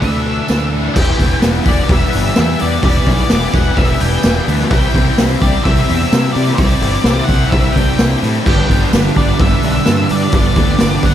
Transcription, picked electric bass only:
0.02 D2
0.50 D2
0.96 E1
1.19 E1
1.44 E1
1.66 E1
1.89 E1
2.15 G1
2.38 E2
2.62 E2
2.83 E1
3.07 B1
3.31 E1
3.54 E1
3.77 E1
4.01 E1
4.24 E1
4.48 D2
4.71 C2
4.95 C2
5.19 C2
5.42 C2
5.66 C2
5.89 E2
6.13 C3
6.36 C3
6.59 C2
6.82 G1
7.05 C2
7.29 C2
7.52 C2
7.76 C2
7.99 C2
8.23 A2
8.46 G1
8.70 G1
8.93 G1
9.17 G1
9.40 G1
9.64 B1
9.88 G2
10.11 G2
10.34 G1
10.57 D2
10.81 G1
11.03 G1

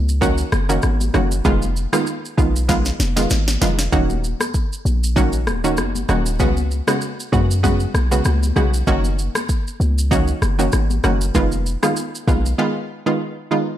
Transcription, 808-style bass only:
Already playing: C#2
0.52 F#1
0.83 G#1
1.14 F#1
1.45 F1
2.38 B1
3.00 F1
3.31 G#1
3.62 F1
3.93 D#1
4.85 A#1
5.47 D#1
5.78 F#1
6.09 D#1
6.40 C#2
7.33 F#2
7.94 B1
8.25 C#2
8.56 B1
8.87 F#1
9.80 C#2
10.42 F#1
10.73 G#1
11.04 F#1
11.35 F1
12.28 B1

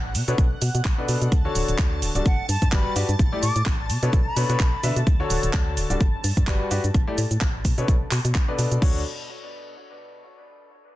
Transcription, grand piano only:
0.28 B2 D4 A4 B4 C#5
0.98 B2 D4 A4 B4 D5
1.45 D3 D4 F#4 A4 C#5
2.15 G3 D4 F#4 A4 D5
2.72 G3 F#4 G4 B4 D5
2.96 F#4 G4 B4 D5
3.32 A3 E4 G4 A4 D5
4.03 B2 D4 A4 B4 C#5
4.37 B2 D4 A4 B4 C#5
4.50 B2 D4 A4 B4 C#5
4.83 D3 D4 A4 B4 E5
5.20 D3 D4 F#4 A4 C#5
5.90 G3 D4 F#4 A4 D5
6.48 G3 F#4 G4 B4 D5
6.71 F#4 G4 B4 D5
7.07 A3 E4 G4 A4 D5
7.78 B2 D4 A4 B4 C#5
8.48 B2 D4 A4 B4 D5
8.82 D4 F#4 A4 C#5

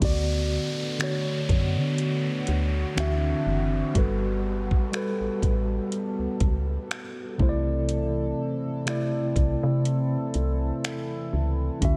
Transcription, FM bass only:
0.02 D2
1.49 F#2
1.76 D3
2.48 D2
2.97 D2
3.46 F#1
3.95 G1
5.21 A1
5.43 A1
6.19 C#2
6.41 C#2
7.40 C2
9.36 C2
9.63 C3
10.35 C2
11.33 C#2
11.82 D2

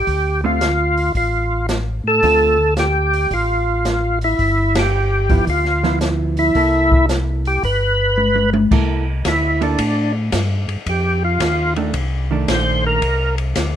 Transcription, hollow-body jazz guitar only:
0.44 D3 A3 C4 F4
2.23 D3 A3 C4 F4
5.30 F3 B3 E4
5.84 F3 B3 E4
6.56 A#3 E4 A4
8.72 A#3 E4 A4
9.61 A#3 E4 A4
11.77 D#3 A3 D4
12.31 D#3 A3 D4

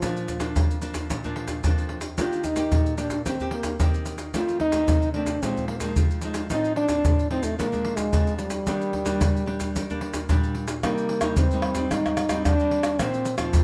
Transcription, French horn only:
Already playing: F3
2.18 F4
2.45 D#4
2.98 D4
3.26 C4
3.53 A#3
4.36 F4
4.61 D#4
5.13 D4
5.42 C4
5.68 A#3
5.76 A#3 C4
6.51 D#4
6.77 D4
7.31 C4
7.43 A3
7.59 A#3
7.96 G#3
8.38 G3
10.84 A#3
11.38 C4
11.92 D#4
12.46 D4
13.00 C4
13.38 F3

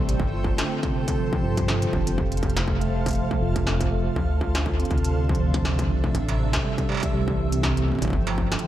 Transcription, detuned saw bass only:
0.09 A1
0.20 G1
1.43 G2
1.93 F1
3.42 F1
4.16 D2
4.91 D2
5.40 D2
5.90 C2
6.15 A1
7.14 C2
8.02 A1
8.13 G1

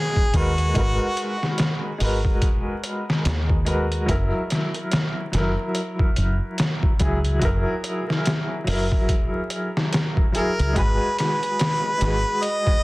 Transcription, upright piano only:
Already playing: G#3 B3 F#4 G#4
0.33 G#3 F#4 A#4 B4
0.74 G#3 F#4 A#4
0.79 B4
1.98 G#3 F#4 A#4
2.03 B4
3.65 G#3 F#4 A#4 B4
4.06 F#3 E4
4.11 A#4
5.32 F#3 E4
5.37 A#4
6.99 F#3 E4 G#4
7.39 F#3 E4
7.45 A#4
8.64 F#3 E4
8.69 A#4
10.32 F#3 E4 G#4
10.73 G#3 F#4 G#4
10.78 B4
11.98 G#3 F#4 G#4
12.03 B4

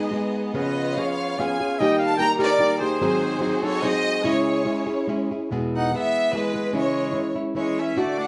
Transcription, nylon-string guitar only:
Already playing: G#3 B3 D#4 G#4
0.11 G#3 B3 D#4 G#4
0.54 C#3 F3 B3 C#4 G#4
0.97 F3 B3 C#4 G#4
1.38 F3 B3 C#4 G#4
1.61 B3 C#4 G#4
1.81 D#3 G3 A#3 D#4 G4
2.19 G3 A#3 D#4 G4
2.39 A#3 D#4 G4
2.59 G3 A#3 D#4 G4
2.81 A#3 D#4 G4
3.02 G#2 D#3 F#3 C4 D#4 G#4
3.39 F#3 C4 D#4 G#4
3.63 F#3 C4 D#4 G#4
3.83 F#3 C4 D#4 G#4
4.24 C#3 G#3 C#4 E4 G#4
4.65 G#3 C#4 E4 G#4
4.87 C#4 E4 G#4
5.08 G#3 C#4 E4 G#4
5.31 C#4 E4 G#4
5.51 E2 B2 E3 G#3 B3 G#4
5.92 E3 G#3 B3 G#4
6.32 E3 G#3 B3 G#4
6.54 E3 G#3 B3 G#4
6.73 C#3 E3 G#3 C#4 E4
7.13 E3 G#3 C#4 E4
7.36 G#3 C#4 E4
7.55 E3 G#3 C#4 E4
7.96 D3 A3 D4 F#4

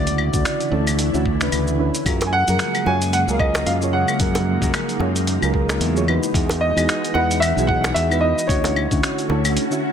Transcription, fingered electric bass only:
Already playing: D2
0.34 D2
0.72 D2
1.14 D2
1.52 D2
2.06 F#2
2.48 F#2
2.86 F#2
3.27 C#2
3.66 F#2
4.20 F#2
4.62 F#2
4.99 F#2
5.42 C#2
5.80 E2
6.34 E2
6.76 E2
7.15 E2
7.57 B1
7.95 E2
8.49 D2
8.91 D2
9.29 D2

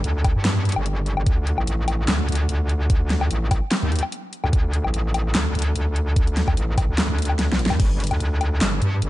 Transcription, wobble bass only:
0.04 D2
0.35 G2
0.76 G1
1.17 G1
1.26 D2
1.58 A1
1.67 A1
2.08 D2
2.28 D2
2.49 D2
3.31 A1
3.82 D#2
4.44 D2
4.53 D2
4.85 A1
4.94 A1
5.35 D2
5.55 D2
5.76 D2
6.57 A1
6.89 D2
7.09 D2
7.70 D#2
7.80 G1
8.11 D2
8.20 D2
8.61 G1
8.82 G2
9.02 G1

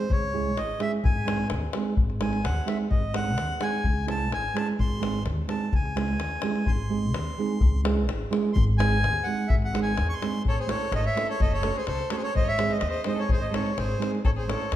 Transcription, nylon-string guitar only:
0.33 G#3 C#4 E4 G#4
0.79 G#3 C#4 E4 G#4
1.25 G#3 C4 D#4 G#4
1.74 G#3 C4 D#4 G#4
2.20 G#3 C4 D#4 G#4
2.65 G#3 C4 D#4 G#4
3.13 G#3 C4 D#4 G#4
3.59 G#3 C4 D#4 G#4
4.06 G#3 C#4 E4 G#4
4.53 G#3 C#4 E4 G#4
5.00 G#3 C4 D#4 G#4
5.47 G#3 C4 D#4 G#4
5.96 G#3 C#4 E4 G#4
6.43 G#3 C#4 E4 G#4
6.89 G#3 C4 D#4 G#4
7.38 G#3 C4 D#4 G#4
7.84 G#3 C#4 E4 G#4
8.31 G#3 C#4 E4 G#4
8.78 G#3 C4 D#4 G#4
9.26 G#3 C4 D#4 G#4
9.73 G#3 C4 D#4 G#4
10.21 G#3 C4 D#4 G#4
10.67 A3 C#4 E4 A4
11.15 A3 C#4 E4 A4
11.61 A3 C#4 F#4 A4
12.10 A3 C#4 F#4 A4
12.58 G#3 C4 D#4 G#4
13.05 G#3 C4 D#4 G#4
13.51 G#3 C4 D#4 G#4
13.98 G#3 C4 D#4 G#4
14.48 A3 C#4 E4 A4

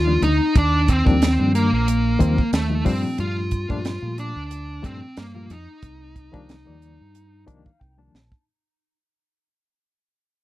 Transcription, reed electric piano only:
0.06 D#3 F3 G3 A#3 D4
0.39 A#3 C4
1.05 D#3 F3 G3 A#3 D4
1.38 D#3 F3 G3 A#3 D4
1.87 A#3 D4
2.19 D#3 F3 G3 A#3 C4
2.69 D#3 F3 G3 A#3 D#4
2.85 A#2 F3 G3 A3 D4
3.69 A#2 F3 G3 A3 D4
4.01 A#2 F3 G3 A3 F4
4.49 A3 F4
4.82 A#2 F3 G3 A3 D4
5.16 A3 F4
5.34 A#2 F3 G3 A3 F4
5.67 A3 D4
6.32 D#3 F3 G3 A#3 D4
6.66 D#3 F3 G3 A#3 D5
7.14 A#3 D#4
7.46 D#3 F3 G3 A#3 D4 D#5
7.79 A#3 D4 G5
7.98 D#3 F3 G3 A#3 D4 A5
8.31 A#3 D4

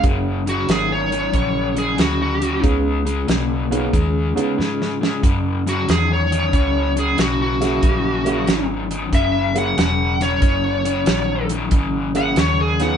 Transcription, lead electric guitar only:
0.49 F#4
0.71 G#4
0.92 C#5
1.78 G#4
2.01 F#4
2.22 F#4
5.69 F#4
5.90 G#4
6.13 C#5
6.99 G#4
7.20 F#4
7.42 F#4
9.15 E5
9.58 F#5
9.79 F#5
10.22 C#5
12.17 F#5
12.39 C#5
12.61 G#4
12.83 F#5

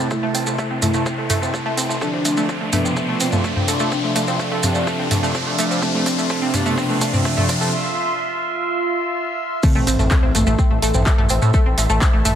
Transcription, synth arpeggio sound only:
0.00 C4
0.11 A3
0.23 A3
0.35 C4
0.47 A3
0.59 A3
0.71 C4
0.82 A3
0.94 A3
1.06 C4
1.18 A3
1.30 A3
1.42 C4
1.54 A3
1.66 A3
1.78 C4
1.90 A3
2.01 A3
2.14 C4
2.25 A3
2.37 A3
2.49 C4
2.61 A3
2.73 A3
2.85 C4
2.97 A3
3.09 A3
3.20 C4
3.33 A3
3.44 A3
3.56 C4
3.68 A3
3.80 A3
3.92 C4
4.04 A3
4.16 A3
4.28 C4
4.40 A3
4.52 A3
4.63 C4
4.75 A3
4.87 A3
4.99 C4
5.11 A3
5.23 A3
5.35 C4
5.47 A3
5.59 A3
5.71 C4
5.83 A3
5.94 A3
6.06 C4
6.18 A3
6.30 A3
6.42 C4
6.54 A3
6.66 A3
6.78 C4
6.90 A3
7.01 A3
7.13 C4
7.25 A3
7.37 A3
7.49 C4
7.61 A3
9.63 A3 A4
9.75 A3 A4
9.87 C4 C5
9.99 A3 A4
10.11 A3 A4
10.23 C4 C5
10.35 A3 A4
10.47 A3 A4
10.59 C4 C5
10.71 A3 A4
10.82 A3 A4
10.94 C4 C5
11.06 A3 A4
11.18 A3 A4
11.30 C4 C5
11.42 A3 A4
11.54 A3 A4
11.66 C4 C5
11.78 A3 A4
11.90 A3 A4
12.01 C4 C5
12.13 A3 A4
12.25 A3 A4

